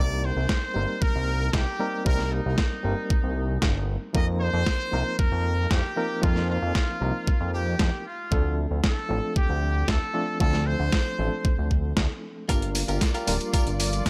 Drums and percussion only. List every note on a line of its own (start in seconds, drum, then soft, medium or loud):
0.49 kick loud
0.49 snare loud
1.02 kick loud
1.53 kick loud
1.53 snare loud
2.06 kick loud
2.19 snare soft
2.58 kick loud
2.58 snare loud
3.10 kick loud
3.62 kick loud
3.62 snare loud
4.15 kick loud
4.66 kick loud
4.66 snare loud
5.19 kick loud
5.71 kick loud
5.71 snare loud
6.23 kick loud
6.36 snare soft
6.75 kick loud
6.75 snare loud
7.27 kick loud
7.79 kick loud
7.79 snare loud
8.32 kick loud
8.84 kick loud
8.84 snare loud
9.36 kick loud
9.88 kick loud
9.88 snare loud
10.40 kick loud
10.53 snare soft
10.92 kick loud
10.92 snare loud
11.45 kick loud
11.71 kick medium
11.97 kick loud
11.97 snare loud
12.49 kick loud
12.49 closed hi-hat medium
12.49 tambourine soft
12.62 closed hi-hat soft
12.75 open hi-hat loud
12.75 tambourine medium
12.88 closed hi-hat soft
12.88 tambourine soft
13.01 kick loud
13.01 snare loud
13.01 closed hi-hat medium
13.01 tambourine soft
13.14 closed hi-hat soft
13.14 tambourine soft
13.27 open hi-hat loud
13.27 tambourine medium
13.40 closed hi-hat soft
13.40 tambourine soft
13.54 kick loud
13.54 closed hi-hat medium
13.54 tambourine soft
13.67 closed hi-hat soft
13.67 tambourine soft
13.80 open hi-hat loud
13.80 tambourine medium
13.93 closed hi-hat soft
13.93 tambourine soft
14.06 kick loud
14.06 snare loud
14.06 closed hi-hat medium
14.06 tambourine soft